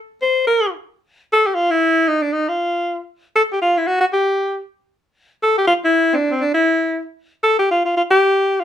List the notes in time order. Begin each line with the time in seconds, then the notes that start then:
0.22 C5
0.47 A#4
1.33 A4
1.46 G4
1.55 F4
1.71 E4
2.07 D#4
2.22 D4
2.32 D#4
2.48 F4
3.36 A4
3.52 G4
3.62 F4
3.77 E4
3.87 F#4
4.01 F#4
4.13 G4
5.43 A4
5.58 G4
5.67 F4
5.85 E4
6.13 C4 D4
6.31 C4
6.41 D4
6.54 E4
7.43 A4
7.59 G4
7.71 F4
7.85 F4
7.97 F4
8.10 G4
8.60 F4